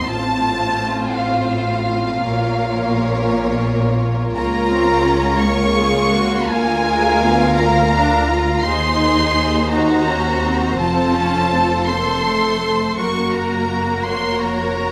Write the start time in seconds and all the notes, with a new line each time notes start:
Already playing: C4
0.07 A1 A2 F4 C5 A5
1.14 F5
2.24 A#1 A#2 A#3 A#4 C#5
4.36 C#2 A#3 F4 A#4 C#5 A#5
4.73 C4
5.07 C#4
5.41 A#3 F4 A#4 C#6
5.77 G#4
6.13 F#4
6.49 D2 A#3 F4 A#4 F5 G#5
6.86 G#3
7.22 B3
7.55 A#3 A#5
7.94 D4
8.29 F4
8.64 D#2 D#4 G#4 C5 C6
9.71 D#4 F#4 A#5
10.08 C#4
10.44 C4
10.80 F1 F2 C4 F4 A4 A5
11.16 C#4
11.53 C4
11.88 A#3 A4 C6
12.27 A3
12.62 A3
12.98 F#1 F#2 A#3 F#4 A#4 C#6
13.32 A#5
14.04 F1 F2 A#4 C6
14.09 C#5
14.43 A#5